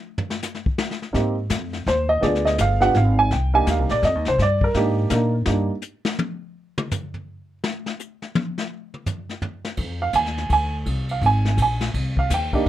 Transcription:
0.18 floor tom
0.30 snare
0.43 snare, hi-hat pedal
0.55 snare
0.66 kick
0.78 snare
0.91 snare
1.02 snare
1.13 upright bass G#2, grand piano A#3 C4 D#4 G4, brush sweep, kick, snare
1.50 upright bass F2, kick, snare, hi-hat pedal
1.73 snare
1.86 upright bass D#2, grand piano C5, kick, snare
2.09 grand piano D#5
2.21 upright bass D2, grand piano B3 D4 F4 G#4 D5, brush sweep, kick, snare
2.35 snare
2.45 grand piano D#5, snare
2.58 upright bass G1, grand piano F5, kick, snare, hi-hat pedal
2.80 grand piano B3 D4 F4 G4 F#5, snare
2.95 upright bass G#1, grand piano F5, kick, snare
3.19 grand piano G#5
3.31 upright bass C2, grand piano G5, brush sweep, kick, snare
3.54 grand piano A#3 D4 D#4 G4 G#5
3.67 upright bass D#2, grand piano F5, kick, snare, hi-hat pedal
3.79 upright bass C2
3.89 upright bass A#1, grand piano D5, snare
4.03 upright bass F2, grand piano D#5, kick, snare
4.15 upright bass D#2
4.25 upright bass C2, grand piano C5, snare
4.38 upright bass G2, grand piano D5, brush sweep, kick, snare
4.61 grand piano A#4, kick
4.74 upright bass G#2, grand piano A#3 D4 D#4 G4, kick, snare
5.10 upright bass A#2, grand piano A#3 D4 D#4 A#4, kick, snare, hi-hat pedal
5.46 upright bass G2, grand piano A#3 D4 D#4 G4, snare
5.82 hi-hat pedal
6.05 snare
6.19 high tom
6.78 mid tom
6.91 floor tom, hi-hat pedal
7.14 floor tom
7.64 snare
7.86 snare
7.99 hi-hat pedal
8.22 snare
8.35 high tom
8.58 snare
8.94 mid tom
9.06 floor tom, hi-hat pedal
9.29 snare
9.42 floor tom
9.65 snare
9.77 upright bass F2, kick, ride
10.02 grand piano F5
10.13 upright bass D#2, grand piano G#5, kick, hi-hat pedal, ride
10.26 snare
10.38 snare
10.50 upright bass D2, grand piano G#5, kick, ride
10.86 upright bass C2, kick, ride
11.09 grand piano F5, ride
11.21 upright bass G#1, kick, ride
11.26 grand piano G#5
11.45 snare
11.57 upright bass A#1, kick, hi-hat pedal, ride
11.62 grand piano G#5
11.80 snare, ride
11.94 upright bass C2, kick, ride
12.17 grand piano F5, kick
12.30 upright bass D#2, kick, snare, hi-hat pedal, ride
12.34 grand piano G5
12.53 grand piano A#3 D4 D#4 G4, kick, ride

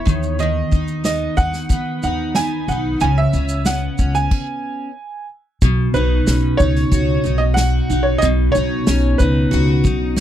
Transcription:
Already playing: steel-string acoustic guitar E3 B3 E4, upright piano C#5
0.05 upright bass D#2, steel-string acoustic guitar D#3, kick, shaker
0.23 shaker
0.39 steel-string acoustic guitar D#3, upright piano D#5, shaker
0.71 upright bass D#2, steel-string acoustic guitar D#4, kick, shaker
0.88 shaker
1.04 steel-string acoustic guitar B3, upright piano D#5, snare, shaker
1.37 upright bass D#2, steel-string acoustic guitar D#4, upright piano F#5, kick, shaker
1.54 snare, shaker
1.69 upright bass D#3, steel-string acoustic guitar B3, kick, shaker
2.03 upright bass D#2, steel-string acoustic guitar D#4, upright piano F#5, shaker
2.35 steel-string acoustic guitar B3, upright piano G#5, snare, shaker
2.68 upright bass B1, steel-string acoustic guitar D#4, upright piano F#5, shaker
3.00 upright bass C#2, steel-string acoustic guitar C#3, upright piano G#5, shaker
3.18 upright piano E5
3.33 upright bass C#2, steel-string acoustic guitar C#4, shaker
3.49 shaker
3.65 steel-string acoustic guitar B3, upright piano F#5, snare, shaker
3.98 upright bass C#2, steel-string acoustic guitar C#4, kick, shaker
4.15 upright piano G#5, shaker
4.31 kick, crash
5.62 upright bass B1, steel-string acoustic guitar B2, kick, shaker
5.94 upright bass B1, steel-string acoustic guitar D#4, upright piano B4, shaker
6.27 upright bass B1, steel-string acoustic guitar C#4, snare, shaker
6.57 upright bass C#2, steel-string acoustic guitar D#4, upright piano C#5, kick, shaker
6.76 snare
6.92 upright bass C#2, steel-string acoustic guitar F#4, kick, shaker
7.24 upright bass B1, steel-string acoustic guitar D#4, shaker
7.38 upright piano D#5
7.54 steel-string acoustic guitar F#4, upright piano F#5, snare, shaker
7.90 upright bass A#1, steel-string acoustic guitar D#4, shaker
8.03 upright piano C#5
8.18 steel-string acoustic guitar B2, upright piano D#5, shaker
8.23 upright bass B1
8.52 upright bass B1, steel-string acoustic guitar D#4, upright piano C#5, shaker
8.87 upright bass B1, steel-string acoustic guitar C#4, snare, shaker
9.18 upright bass C#2, steel-string acoustic guitar D#4, upright piano B4, kick, shaker
9.51 upright bass C#2, steel-string acoustic guitar F#4, shaker
9.84 upright bass B1, steel-string acoustic guitar D#4, kick, shaker
10.16 steel-string acoustic guitar F#4, snare

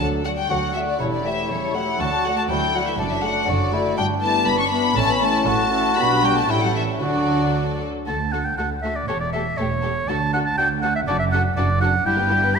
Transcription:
0.00 cello section D2, double bass section D2, viola section F#3 D4, french horn section A3, violin section A4
0.25 french horn section F#3, viola section A3 F#4, violin section F#4 D5 F#5
0.37 french horn section G3, violin section G5
0.49 double bass section D2, cello section D2, viola section F#3 D4, french horn section F#3, bassoon F#4, violin section A4 F#5
0.74 french horn section E3, viola section A3 F#4, violin section F#4 D5 E5
0.86 french horn section D3, violin section D5
0.98 double bass section E1, cello section E2, french horn section C#3, viola section G3 C#4, bassoon E4, violin section E4 A4 C#5
1.12 french horn section D3, violin section D5
1.24 french horn section E3, viola section A3 E4, violin section G4 C#5 E5
1.49 double bass section E1, cello section E2, french horn section C#3, viola section G3 C#4, violin section E4 A4 C#5
1.74 french horn section F#3, viola section A3 E4, violin section G4 C#5 F#5
1.99 double bass section D2, cello section D2, viola section F#3 D4, french horn section A3, bassoon F#4, violin section A4 A5
2.23 french horn section F#3, viola section A3 F#4, violin section F#4 D5 F#5
2.36 french horn section A3, violin section A5
2.49 cello section D2, double bass section D2, viola section F#3 D4, french horn section G3, bassoon E4, violin section A4 G5
2.74 french horn section F#3, viola section A3 F#4, violin section F#4 D5 F#5
2.87 french horn section E3, violin section E5
2.98 double bass section F#1, cello section F#2, french horn section D3, viola section F#3 D4, bassoon D4, violin section A4 D5
3.12 french horn section E3, violin section E5
3.23 french horn section F#3, viola section A3 F#4, violin section F#4 D5 F#5
3.47 double bass section F#1, cello section F#2, french horn section D3, viola section F#3 D4, bassoon F#4, violin section A4 D5
3.72 viola section A3 F#4, bassoon E4, violin section F#4 D5
3.97 double bass section G1, cello section G2, french horn section G3, bassoon D4, violin section G5
4.20 viola section G3 B3, french horn section A3, violin section E4 B4 A5
4.46 double bass section G1, cello section G2, french horn section B3, violin section B5
4.60 french horn section C#4, violin section C#6
4.71 viola section G3 B3, french horn section B3, violin section E4 B4 B5
4.95 double bass section A1, cello section A2, viola section E3 C#4, french horn section A3, bassoon C#4, violin section E4 A4 A5
5.08 french horn section B3, violin section B5
5.20 viola section E3 C#4, french horn section A3, violin section E4 A4 A5
5.46 double bass section A1, cello section A2, french horn section A3, bassoon F#4, violin section A5
5.71 viola section E3 C#4, violin section E4 A4
5.96 double bass section B1, cello section B2, viola section G3 B3, french horn section B3, violin section D4 G4 B5
6.23 french horn section G3, violin section G5
6.35 french horn section A3, violin section A5
6.48 double bass section A1, cello section A2, french horn section G3, viola section G3 C#4, violin section E4 A4 G5, bassoon E4
6.61 french horn section F#3, violin section F#5
6.74 french horn section E3, violin section E5
7.01 double bass section D2, french horn section D3, cello section D3, viola section F#3 D4, violin section F#4 A4 D5, bassoon F#4
8.07 cello section D2, double bass section D2, viola section A3, violin section F#4 A4, oboe A5
8.32 viola section A3, violin section F#4 A4, oboe F#5
8.45 oboe G5
8.58 cello section D2, double bass section D2, viola section A3, violin section F#4 A4, oboe F#5
8.82 viola section A3, violin section F#4 A4, oboe E5
8.96 oboe D5
9.08 double bass section E1, cello section E2, viola section A3, violin section G4 A4, oboe C#5
9.20 oboe D5
9.32 viola section A3, violin section G4 A4, oboe E5
9.57 double bass section E1, cello section E2, viola section A3, violin section G4 A4, oboe C#5
9.82 viola section A3, violin section G4 A4
10.08 cello section D2, double bass section D2, viola section D4, violin section F#4 A4, oboe A5
10.33 viola section D4, violin section F#4 A4, oboe F#5
10.46 oboe A5
10.57 cello section D2, double bass section D2, viola section D4, violin section F#4 A4, oboe G5
10.82 viola section D4, violin section F#4 A4, oboe F#5
10.95 oboe E5
11.07 double bass section F#1, cello section F#2, viola section D4, violin section F#4 A4, oboe D5
11.19 oboe E5
11.32 viola section D4, violin section F#4 A4, oboe F#5
11.56 double bass section F#1, cello section F#2, viola section D4, violin section F#4 A4, oboe D5
11.81 viola section D4, violin section F#4 A4, oboe F#5
12.06 double bass section G1, cello section G2, viola section G3, violin section E4 G4, oboe G5
12.18 viola section B3, violin section G4 B4
12.30 viola section G3, violin section E4 G4
12.44 viola section B3, violin section G4 B4
12.55 oboe B5

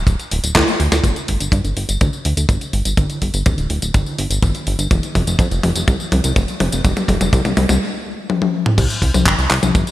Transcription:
0.07 analog synth bass D1, kick, closed hi-hat, tambourine
0.20 closed hi-hat, tambourine
0.31 analog synth bass D1, open hi-hat
0.44 analog synth bass D1, closed hi-hat, tambourine
0.55 analog synth bass D2, kick, snare, clap, closed hi-hat, tambourine
0.68 closed hi-hat, tambourine
0.80 analog synth bass D2, open hi-hat
0.92 analog synth bass D2, snare, closed hi-hat, tambourine
1.04 analog synth bass G1, kick, closed hi-hat, mid tom, tambourine
1.16 closed hi-hat, tambourine
1.28 analog synth bass G1, kick, open hi-hat
1.40 analog synth bass G1, closed hi-hat, tambourine
1.52 analog synth bass G2, kick, closed hi-hat, mid tom, tambourine
1.65 analog synth bass G1, closed hi-hat, tambourine
1.77 analog synth bass G1, open hi-hat
1.89 analog synth bass G1, closed hi-hat, tambourine
2.01 analog synth bass D2, kick, closed hi-hat, mid tom, tambourine
2.13 tambourine
2.25 analog synth bass D2, open hi-hat
2.37 analog synth bass D2, closed hi-hat, tambourine
2.49 analog synth bass G1, kick, closed hi-hat, mid tom, tambourine
2.61 closed hi-hat, tambourine
2.73 analog synth bass G1, open hi-hat
2.85 analog synth bass G1, closed hi-hat, tambourine
2.97 analog synth bass G1, kick, closed hi-hat, mid tom, tambourine
3.10 closed hi-hat, tambourine
3.22 analog synth bass G1, kick, open hi-hat
3.34 analog synth bass G1, closed hi-hat, tambourine
3.46 analog synth bass D1, kick, closed hi-hat, mid tom, tambourine
3.58 analog synth bass D1, closed hi-hat, tambourine
3.70 analog synth bass D1, open hi-hat
3.82 analog synth bass D1, closed hi-hat, tambourine
3.94 analog synth bass G1, kick, closed hi-hat, mid tom, tambourine
4.06 tambourine
4.18 analog synth bass G1, open hi-hat
4.30 analog synth bass G1, closed hi-hat, tambourine
4.43 analog synth bass G1, kick, closed hi-hat, mid tom, tambourine
4.55 closed hi-hat, tambourine
4.67 analog synth bass G1, open hi-hat
4.79 analog synth bass G1, closed hi-hat, tambourine
4.91 analog synth bass F1, kick, closed hi-hat, mid tom, tambourine
5.03 closed hi-hat, tambourine
5.15 analog synth bass F1, kick, open hi-hat, mid tom
5.27 analog synth bass F1, closed hi-hat, tambourine
5.39 analog synth bass F2, kick, closed hi-hat, mid tom, tambourine
5.51 analog synth bass F1, closed hi-hat, tambourine
5.63 analog synth bass F1, open hi-hat, mid tom
5.75 analog synth bass F1, closed hi-hat, tambourine
5.88 analog synth bass C2, kick, closed hi-hat, mid tom, tambourine
6.00 tambourine
6.12 analog synth bass C2, open hi-hat, mid tom
6.24 analog synth bass C2, closed hi-hat, tambourine
6.36 analog synth bass F1, kick, closed hi-hat, mid tom, tambourine
6.48 closed hi-hat, tambourine
6.60 analog synth bass F1, open hi-hat, mid tom
6.72 analog synth bass F1, closed hi-hat, tambourine
6.85 analog synth bass F1, kick, closed hi-hat, mid tom, tambourine
6.97 closed hi-hat, mid tom, tambourine
7.08 analog synth bass F1, kick, open hi-hat, mid tom
7.21 analog synth bass F1, closed hi-hat, mid tom, tambourine
7.33 analog synth bass C2, kick, closed hi-hat, mid tom, tambourine
7.45 analog synth bass C2, closed hi-hat, mid tom, tambourine
7.57 analog synth bass C2, open hi-hat, mid tom
7.69 analog synth bass C2, closed hi-hat, mid tom, tambourine
8.30 high tom
8.42 high tom
8.66 mid tom
8.78 analog synth bass C2, kick, closed hi-hat, crash, tambourine
8.90 closed hi-hat, tambourine
9.02 analog synth bass C2, kick, open hi-hat
9.14 analog synth bass C2, closed hi-hat, high tom, tambourine
9.26 analog synth bass G1, kick, clap, closed hi-hat, tambourine
9.39 analog synth bass C2, closed hi-hat, tambourine
9.51 analog synth bass C2, clap, open hi-hat
9.63 analog synth bass C2, closed hi-hat, high tom, tambourine
9.75 analog synth bass G1, kick, closed hi-hat, tambourine
9.87 closed hi-hat, tambourine

